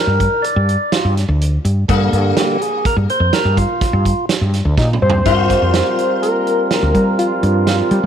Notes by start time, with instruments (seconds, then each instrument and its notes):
Already playing: sitar D4, tonewheel organ A#4
0.07 fretless electric bass G2
0.20 kick, closed hi-hat
0.42 tonewheel organ D5, closed hi-hat
0.56 fretless electric bass G2
0.69 closed hi-hat
0.92 tonewheel organ F4, snare, closed hi-hat
1.05 fretless electric bass G2
1.17 snare, closed hi-hat
1.28 fretless electric bass D2
1.41 closed hi-hat
1.65 fretless electric bass G2, closed hi-hat
1.88 fretless electric bass G2, tonewheel organ D3 G3 A#3, sitar A#3, kick, closed hi-hat
2.13 fretless electric bass G2, closed hi-hat
2.37 tonewheel organ G4, snare, closed hi-hat
2.61 tonewheel organ G#4, closed hi-hat
2.85 tonewheel organ A#4, kick, closed hi-hat
2.97 fretless electric bass G2
3.09 tonewheel organ C5, closed hi-hat
3.20 fretless electric bass F2
3.33 tonewheel organ A#4, snare, closed hi-hat
3.45 fretless electric bass G2
3.57 tonewheel organ F4, kick, closed hi-hat
3.81 kick, snare, closed hi-hat
3.93 fretless electric bass G2
4.05 kick, closed hi-hat
4.29 snare, closed hi-hat
4.41 fretless electric bass G2
4.53 snare, closed hi-hat
4.65 fretless electric bass D2
4.77 fretless electric bass A#2, analog synth lead D#4, kick, snare
4.93 mid tom
5.02 fretless electric bass G2, analog synth lead C5
5.10 floor tom
5.25 fretless electric bass G2, tonewheel organ G3 C4 F4 A#4, sitar F4, kick, closed hi-hat
5.50 kick, snare, closed hi-hat
5.62 fretless electric bass F2
5.74 snare, closed hi-hat
5.99 closed hi-hat
6.22 analog synth lead A#4, closed hi-hat
6.47 closed hi-hat
6.71 analog synth lead A#4, snare, closed hi-hat
6.83 fretless electric bass D2
6.94 fretless electric bass G3, kick, closed hi-hat
7.19 analog synth lead F4, closed hi-hat
7.36 sitar D#4
7.42 fretless electric bass G2, analog synth lead F4, closed hi-hat
7.67 snare, closed hi-hat
7.91 fretless electric bass G3, closed hi-hat